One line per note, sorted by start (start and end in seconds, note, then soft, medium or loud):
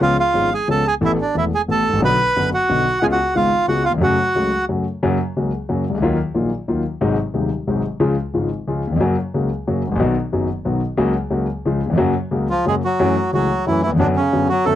0.01 0.15 C#2 medium
0.01 0.15 C#3 medium
0.01 0.15 F3 medium
0.01 0.15 B3 medium
0.01 0.15 C#4 medium
0.01 0.17 F4 medium
0.01 0.15 G#4 medium
0.01 0.17 F5 medium
0.19 0.50 F4 medium
0.19 0.53 F5 medium
0.34 0.48 G#1 medium
0.34 0.48 G#2 medium
0.34 0.48 F3 soft
0.34 0.48 B3 soft
0.34 0.48 C#4 soft
0.34 0.49 G#4 soft
0.54 0.68 G#4 medium
0.54 0.68 G#5 medium
0.68 0.82 C#2 medium
0.68 0.82 C#3 medium
0.68 0.82 F3 soft
0.68 0.82 B3 soft
0.68 0.83 C#4 soft
0.68 0.83 G#4 medium
0.68 0.85 A4 medium
0.68 0.87 A5 medium
0.87 0.94 G#4 medium
0.87 0.95 G#5 medium
1.01 1.16 A1 medium
1.01 1.16 A2 medium
1.01 1.16 E3 medium
1.01 1.16 A3 medium
1.01 1.16 B3 medium
1.01 1.11 E4 medium
1.01 1.16 A4 medium
1.05 1.12 E5 medium
1.21 1.35 D4 medium
1.21 1.36 D5 medium
1.35 1.49 E1 medium
1.35 1.49 E2 soft
1.35 1.49 E3 soft
1.35 1.49 A3 soft
1.35 1.49 B3 soft
1.35 1.44 E4 medium
1.35 1.50 A4 soft
1.35 1.45 E5 medium
1.54 1.61 G#4 medium
1.54 1.62 G#5 medium
1.68 1.82 A1 soft
1.68 1.83 A2 medium
1.68 1.82 E3 soft
1.68 1.83 A3 soft
1.68 1.83 B3 soft
1.68 1.83 A4 medium
1.68 2.01 A4 medium
1.68 2.01 A5 loud
1.89 1.93 G#1 medium
1.89 1.98 A1 medium
1.98 2.02 A#1 medium
1.98 2.16 B1 medium
1.98 2.16 B2 medium
1.98 2.16 D3 medium
1.98 2.16 B3 medium
2.02 2.16 F#3 medium
2.02 2.16 F#4 medium
2.02 2.50 B4 medium
2.02 2.50 B5 loud
2.36 2.50 F#1 medium
2.36 2.50 F#2 medium
2.36 2.50 D3 soft
2.36 2.50 F#3 soft
2.36 2.50 B3 soft
2.36 2.50 F#4 medium
2.54 2.99 F#4 medium
2.54 3.04 F#5 loud
2.69 2.83 B1 medium
2.69 2.83 B2 medium
2.69 2.83 D3 soft
2.69 2.83 F#3 soft
2.69 2.83 B3 soft
2.69 2.83 F#4 soft
3.02 3.15 C#2 medium
3.02 3.16 C#3 medium
3.02 3.16 G#3 medium
3.02 3.15 B3 medium
3.02 3.16 F4 medium
3.02 3.06 G#4 medium
3.02 3.06 G#5 loud
3.12 3.34 F#4 medium
3.12 3.36 F#5 medium
3.35 3.49 G#1 medium
3.35 3.49 G#2 medium
3.35 3.49 C#3 soft
3.35 3.49 G#3 soft
3.35 3.49 B3 soft
3.35 3.49 F4 medium
3.35 3.66 F4 medium
3.35 3.66 F5 medium
3.68 3.82 C#2 medium
3.68 3.82 C#3 medium
3.68 3.82 G#3 soft
3.68 3.82 B3 soft
3.68 3.82 F4 medium
3.68 3.83 F#4 medium
3.68 3.85 F#5 medium
3.85 3.92 F4 medium
3.85 3.92 F5 medium
3.90 3.93 D#2 medium
3.94 3.97 E2 medium
3.98 4.02 F2 medium
3.98 4.15 F#2 medium
3.98 4.15 C#3 medium
3.98 4.15 F#3 medium
3.98 4.15 A3 medium
4.02 4.16 F#4 medium
4.02 4.65 F#4 medium
4.02 4.65 F#5 medium
4.35 4.49 C#2 medium
4.35 4.49 C#3 medium
4.35 4.49 F#3 soft
4.35 4.49 A3 soft
4.35 4.49 F#4 soft
4.69 4.83 F#2 medium
4.69 4.83 C#3 soft
4.69 4.83 F#3 soft
4.69 4.83 A3 soft
4.69 4.83 F#4 medium
5.03 5.17 F#2 medium
5.03 5.16 C#3 medium
5.03 5.17 F#3 medium
5.03 5.17 A#3 medium
5.03 5.17 F#4 medium
5.37 5.50 C#2 medium
5.37 5.50 C#3 medium
5.37 5.50 F#3 soft
5.37 5.50 A#3 soft
5.37 5.50 F#4 medium
5.69 5.83 F#2 medium
5.69 5.83 C#3 soft
5.69 5.83 F#3 medium
5.69 5.83 A#3 soft
5.69 5.83 F#4 medium
5.90 5.94 C2 medium
5.94 5.98 C#2 medium
5.94 6.02 D2 medium
6.02 6.16 D#2 medium
6.02 6.16 D#3 medium
6.02 6.16 F#3 medium
6.02 6.16 A#3 medium
6.02 6.16 F4 medium
6.34 6.49 A#1 medium
6.34 6.49 A#2 medium
6.34 6.48 D#3 soft
6.34 6.48 F#3 soft
6.34 6.49 A#3 soft
6.34 6.49 F4 medium
6.68 6.82 D#2 medium
6.68 6.82 D#3 medium
6.68 6.82 F#3 soft
6.68 6.82 A#3 soft
6.68 6.82 F4 medium
7.01 7.15 G#1 medium
7.01 7.15 G#2 medium
7.01 7.15 C3 medium
7.01 7.15 F#3 medium
7.01 7.15 G#3 medium
7.01 7.15 D#4 medium
7.34 7.48 D#1 medium
7.34 7.48 D#2 medium
7.34 7.48 C3 medium
7.34 7.48 F#3 soft
7.34 7.48 G#3 soft
7.34 7.48 D#4 soft
7.67 7.81 G#1 medium
7.67 7.81 G#2 medium
7.67 7.81 C3 soft
7.67 7.81 F#3 soft
7.67 7.81 G#3 soft
7.67 7.81 D#4 medium
8.00 8.14 C#2 medium
8.00 8.14 C#3 medium
8.00 8.14 F3 medium
8.00 8.14 G#3 medium
8.00 8.14 F4 medium
8.34 8.48 G#1 medium
8.34 8.48 G#2 medium
8.34 8.48 C#3 soft
8.34 8.48 F3 soft
8.34 8.48 G#3 soft
8.34 8.48 F4 soft
8.67 8.81 C#2 medium
8.67 8.82 C#3 medium
8.67 8.82 F3 soft
8.67 8.82 G#3 soft
8.67 8.82 F4 medium
8.87 8.92 D#2 medium
8.92 8.96 E2 medium
8.92 9.00 F2 medium
9.00 9.14 F#2 medium
9.00 9.14 C#3 medium
9.00 9.15 F#3 medium
9.00 9.15 A#3 medium
9.00 9.15 F#4 medium
9.34 9.48 C#2 medium
9.34 9.48 C#3 medium
9.34 9.48 F#3 soft
9.34 9.48 A#3 soft
9.34 9.48 F#4 soft
9.67 9.81 F#2 medium
9.67 9.81 C#3 medium
9.67 9.81 F#3 medium
9.67 9.81 A#3 soft
9.67 9.81 F#4 medium
9.87 9.92 G#1 medium
9.92 9.96 A1 medium
9.96 10.00 A#1 medium
9.96 10.13 D#3 medium
9.96 10.14 F#3 medium
10.00 10.14 B1 medium
10.00 10.14 B2 medium
10.00 10.14 B3 medium
10.00 10.14 F#4 medium
10.33 10.47 F#1 medium
10.33 10.47 F#2 medium
10.33 10.47 D#3 medium
10.33 10.47 F#3 soft
10.33 10.47 B3 soft
10.33 10.47 F#4 medium
10.65 10.79 B1 medium
10.65 10.79 B2 medium
10.65 10.79 D#3 medium
10.65 10.80 F#3 soft
10.65 10.80 B3 soft
10.65 10.80 F#4 medium
10.97 11.12 C#2 medium
10.97 11.12 C#3 medium
10.97 11.12 F#3 medium
10.97 11.12 A#3 medium
10.97 11.12 F#4 medium
11.30 11.45 C#2 medium
11.30 11.46 C#3 medium
11.30 11.45 F#3 soft
11.30 11.45 A#3 medium
11.30 11.46 F#4 medium
11.65 11.80 C#2 medium
11.65 11.79 C#3 medium
11.65 11.80 F3 soft
11.65 11.80 G#3 soft
11.65 11.80 F4 medium
11.86 11.90 D#2 medium
11.90 11.94 E2 medium
11.90 11.98 F2 medium
11.98 12.12 F#2 medium
11.98 12.12 C#3 medium
11.98 12.12 F#3 medium
11.98 12.12 A#3 medium
11.98 12.12 F#4 medium
12.31 12.46 C#2 medium
12.31 12.46 C#3 medium
12.31 12.46 F#3 soft
12.31 12.46 A#3 soft
12.31 12.46 F#4 soft
12.50 12.66 F3 medium
12.50 12.65 F4 medium
12.65 12.80 F#2 medium
12.65 12.80 C#3 soft
12.65 12.80 F#3 medium
12.65 12.76 G#3 medium
12.65 12.80 A#3 soft
12.65 12.80 F#4 medium
12.65 12.75 G#4 loud
12.84 13.32 F#3 medium
12.84 13.31 F#4 medium
13.00 13.14 F#2 medium
13.00 13.14 E3 medium
13.00 13.14 F#3 medium
13.00 13.14 A3 medium
13.00 13.14 C#4 medium
13.00 13.14 F#4 medium
13.33 13.48 C#2 medium
13.33 13.48 C#3 medium
13.33 13.47 E3 soft
13.33 13.66 F#3 medium
13.33 13.47 A3 soft
13.33 13.48 C#4 soft
13.33 13.48 F#4 medium
13.33 13.65 F#4 medium
13.67 13.81 F#2 medium
13.67 13.81 E3 medium
13.67 13.83 E3 medium
13.67 13.81 F#3 medium
13.67 13.81 A3 soft
13.67 13.81 C#4 soft
13.67 13.81 E4 medium
13.67 13.81 F#4 medium
13.83 13.92 E3 medium
13.83 13.90 E4 medium
13.87 13.92 D#2 medium
13.92 13.96 E2 medium
13.92 14.00 F2 medium
13.99 14.14 F#2 medium
13.99 14.14 D3 medium
13.99 14.09 D3 medium
13.99 14.14 F#3 medium
13.99 14.14 B3 medium
13.99 14.14 C#4 medium
13.99 14.07 D4 medium
13.99 14.14 F#4 medium
14.16 14.49 C#3 medium
14.16 14.48 C#4 medium
14.33 14.48 F#2 medium
14.33 14.48 D3 soft
14.33 14.47 F#3 medium
14.33 14.48 B3 soft
14.33 14.48 C#4 soft
14.33 14.48 F#4 medium
14.49 14.67 F#3 medium
14.49 14.65 F#4 loud
14.65 14.75 F#2 medium
14.65 14.75 D3 soft
14.65 14.75 F#3 medium
14.65 14.75 A3 medium
14.65 14.75 B3 soft
14.65 14.75 C#4 soft
14.65 14.75 F#4 medium
14.65 14.75 A4 loud